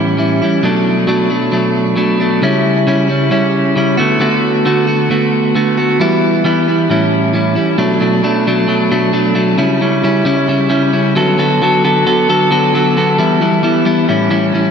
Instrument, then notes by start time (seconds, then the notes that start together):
clean electric guitar
Already playing: A2 E3 G3 C#4 E4
0.17 E3 G3 C#4 E4
0.42 G3 C#4 E4
0.63 B2 F#3 A3 D4
1.07 B2 F#3 A3 D4
1.30 F#3 A3 D4
1.52 B2 F#3 A3 D4
1.96 B2 F#3 A3 D4
2.20 F#3 A3 D4
2.42 C#3 G3 C#4 E4
2.87 C#3 G3 C#4 E4
3.08 G3 C#4 E4
3.30 C#3 G3 C#4 E4
3.76 C#3 G3 C#4 E4
3.97 D3 A3 B3 F#4
4.19 D3 A3 B3 F#4
4.65 D3 A3 B3 F#4
4.87 A3 B3 F#4
5.10 D3 A3 B3 F#4
5.55 D3 A3 B3 F#4
5.77 A3 B3 F#4
6.00 E3 G3 B3 E4
6.44 E3 G3 B3 E4
6.68 G3 B3 E4
6.90 A2 E3 G3 C#4 E4
7.33 E3 G3 C#4 E4
7.55 G3 C#4 E4
7.78 B2 F#3 A3 D4
8.00 B2 F#3 A3 D4
8.23 B2 F#3 A3 D4
8.47 B2 F#3 A3 D4
8.68 B2 F#3 A3 D4
8.91 B2 F#3 A3 D4
9.13 B2 F#3 A3 D4
9.34 B2 F#3 A3 D4
9.58 C#3 G3 C#4 E4
9.81 C#3 G3 C#4 E4
10.04 C#3 G3 C#4 E4
10.25 C#3 G3 C#4 E4
10.48 C#3 G3 C#4 E4
10.69 C#3 G3 C#4 E4
10.92 C#3 G3 C#4 E4
11.15 D3 F#3 B3 F#4 A4
11.38 D3 F#3 B3 F#4 A4
11.61 D3 F#3 B3 F#4 A4
11.84 D3 F#3 B3 F#4 A4
12.05 D3 F#3 B3 F#4 A4
12.29 D3 F#3 B3 F#4 A4
12.50 D3 F#3 B3 F#4 A4
12.74 D3 F#3 B3 F#4 A4
12.96 D3 F#3 B3 F#4 A4
13.18 E3 G3 B3 E4
13.41 E3 G3 B3 E4
13.63 E3 G3 B3 E4
13.85 E3 G3 B3 E4
14.08 A2 E3 G3 C#4 E4
14.30 A2 E3 G3 C#4 E4
14.53 A2 E3 G3 C#4 E4